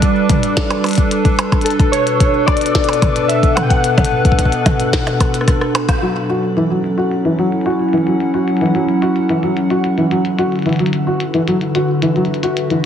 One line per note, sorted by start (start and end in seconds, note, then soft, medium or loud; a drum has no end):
0.00 1.66 G3 medium
0.00 6.02 D4 medium
0.00 2.65 F#4 medium
0.00 12.04 A4 medium
0.00 2.25 B4 medium
0.00 1.34 D5 medium
0.00 kick loud
0.00 closed hi-hat medium
0.29 kick loud
0.29 closed hi-hat medium
0.29 mid tom loud
0.43 closed hi-hat soft
0.57 kick loud
0.57 snare loud
0.57 closed hi-hat medium
0.70 closed hi-hat soft
0.70 percussion blips medium
0.84 closed hi-hat soft
0.84 percussion blips soft
0.86 closed hi-hat soft
0.89 closed hi-hat soft
0.91 closed hi-hat medium
0.93 closed hi-hat medium
0.95 kick loud
0.95 closed hi-hat medium
1.11 closed hi-hat medium
1.25 kick loud
1.25 closed hi-hat soft
1.39 closed hi-hat medium
1.39 percussion blips medium
1.52 kick loud
1.52 closed hi-hat soft
1.52 percussion blips soft
1.61 1.93 A4 medium
1.61 closed hi-hat soft
1.66 6.02 B2 medium
1.66 closed hi-hat medium
1.70 closed hi-hat soft
1.79 kick loud
1.79 closed hi-hat soft
1.92 2.49 C#5 loud
1.92 closed hi-hat medium
2.03 7.23 B3 medium
2.03 closed hi-hat soft
2.20 kick loud
2.20 closed hi-hat medium
2.27 7.01 B4 medium
2.46 3.31 D5 loud
2.46 kick loud
2.46 closed hi-hat soft
2.46 percussion blips medium
2.57 closed hi-hat soft
2.61 closed hi-hat soft
2.66 closed hi-hat medium
2.75 kick loud
2.75 snare loud
2.75 closed hi-hat soft
2.84 closed hi-hat soft
2.89 closed hi-hat soft
2.89 percussion blips medium
2.93 closed hi-hat medium
3.02 kick loud
3.02 closed hi-hat medium
3.02 mid tom medium
3.02 percussion blips soft
3.16 closed hi-hat medium
3.28 3.57 E5 loud
3.28 closed hi-hat medium
3.43 kick loud
3.43 closed hi-hat soft
3.55 3.63 F#5 loud
3.55 closed hi-hat medium
3.55 mid tom medium
3.55 percussion blips medium
3.62 3.70 G5 medium
3.69 5.43 F#5 loud
3.69 kick loud
3.69 closed hi-hat medium
3.84 closed hi-hat medium
3.98 kick loud
3.98 closed hi-hat soft
3.98 mid tom medium
3.98 percussion blips medium
4.05 closed hi-hat medium
4.25 kick loud
4.25 closed hi-hat medium
4.32 kick medium
4.39 kick medium
4.39 closed hi-hat medium
4.45 kick medium
4.52 closed hi-hat soft
4.66 kick loud
4.66 closed hi-hat medium
4.66 mid tom loud
4.66 percussion blips medium
4.80 closed hi-hat medium
4.93 kick loud
4.93 snare loud
4.93 closed hi-hat medium
5.07 closed hi-hat soft
5.07 percussion blips medium
5.20 kick loud
5.20 cross-stick medium
5.20 closed hi-hat medium
5.20 percussion blips soft
5.34 closed hi-hat medium
5.41 cross-stick medium
5.48 kick loud
5.48 cross-stick medium
5.48 closed hi-hat medium
5.61 cross-stick medium
5.75 closed hi-hat medium
5.75 percussion blips medium
5.89 kick loud
5.89 cross-stick medium
5.89 closed hi-hat medium
5.89 percussion blips soft
6.02 6.10 F#3 medium
6.02 10.39 F#3 medium
6.02 closed hi-hat medium
6.16 closed hi-hat soft
6.28 10.39 C#4 medium
6.28 6.41 F#4 medium
6.28 closed hi-hat medium
6.43 closed hi-hat soft
6.57 6.61 E3 medium
6.57 closed hi-hat medium
6.68 6.78 F#3 medium
6.68 12.13 E4 medium
6.68 12.13 F#5 medium
6.84 closed hi-hat medium
6.98 7.09 F#4 medium
6.98 closed hi-hat soft
7.11 closed hi-hat medium
7.25 7.29 E3 medium
7.25 closed hi-hat soft
7.38 7.46 F#3 medium
7.38 closed hi-hat medium
7.52 closed hi-hat soft
7.61 closed hi-hat soft
7.66 7.77 F#4 medium
7.66 closed hi-hat medium
7.70 closed hi-hat soft
7.79 closed hi-hat soft
7.89 closed hi-hat soft
7.93 7.98 E3 medium
7.93 closed hi-hat medium
7.98 closed hi-hat soft
8.07 8.14 F#3 medium
8.07 closed hi-hat medium
8.20 closed hi-hat medium
8.34 8.45 F#4 medium
8.34 closed hi-hat soft
8.48 closed hi-hat medium
8.57 closed hi-hat medium
8.61 8.66 E3 medium
8.61 closed hi-hat soft
8.66 closed hi-hat soft
8.75 8.82 F#3 medium
8.75 closed hi-hat medium
8.89 closed hi-hat soft
9.02 9.13 F#4 medium
9.02 closed hi-hat medium
9.16 closed hi-hat soft
9.29 9.34 E3 medium
9.29 closed hi-hat medium
9.43 9.51 F#3 medium
9.43 closed hi-hat soft
9.57 closed hi-hat medium
9.70 9.82 F#4 medium
9.70 closed hi-hat medium
9.84 closed hi-hat medium
9.98 10.02 E3 medium
9.98 closed hi-hat soft
10.11 10.19 F#3 medium
10.11 closed hi-hat medium
10.25 closed hi-hat soft
10.38 12.86 D3 medium
10.38 10.50 F#4 medium
10.38 closed hi-hat medium
10.52 12.86 D4 medium
10.52 closed hi-hat soft
10.56 closed hi-hat soft
10.59 closed hi-hat soft
10.62 closed hi-hat soft
10.66 10.70 E3 medium
10.66 closed hi-hat soft
10.69 closed hi-hat soft
10.73 closed hi-hat soft
10.76 closed hi-hat soft
10.79 10.87 F#3 medium
10.79 closed hi-hat medium
10.86 closed hi-hat medium
10.91 12.86 B4 medium
10.91 closed hi-hat medium
11.07 11.18 F#4 medium
11.20 12.86 F#4 medium
11.20 closed hi-hat medium
11.34 11.39 E3 medium
11.34 closed hi-hat soft
11.48 11.55 F#3 medium
11.48 closed hi-hat medium
11.61 closed hi-hat soft
11.75 11.86 F#4 medium
11.75 closed hi-hat medium
11.93 12.86 E5 medium
12.02 12.07 E3 medium
12.02 closed hi-hat medium
12.16 12.23 F#3 medium
12.16 closed hi-hat soft
12.25 closed hi-hat soft
12.34 closed hi-hat soft
12.43 12.54 F#4 medium
12.43 closed hi-hat medium
12.57 closed hi-hat medium
12.70 12.75 E3 medium
12.70 closed hi-hat soft